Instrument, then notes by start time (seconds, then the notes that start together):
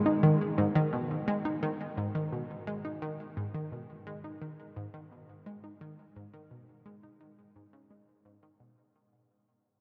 synth arpeggio sound
0.06 D#4
0.23 D#3
0.58 G#2
0.75 D#3
0.93 B2
1.28 G#3
1.45 D#4
1.63 D#3
1.97 G#2
2.15 D#3
2.32 B2
2.67 G#3
2.85 D#4
3.02 D#3
3.37 G#2
3.54 D#3
3.72 B2
4.07 G#3
4.24 D#4
4.42 D#3
4.76 G#2
4.94 D#3
5.11 B2
5.46 G#3
5.64 D#4
5.81 D#3
6.16 G#2
6.34 D#3
6.51 B2
6.86 G#3
7.03 D#4
7.21 D#3
7.56 G#2
7.73 C#3
7.91 G#3
8.25 G#2
8.43 D#3
8.60 B2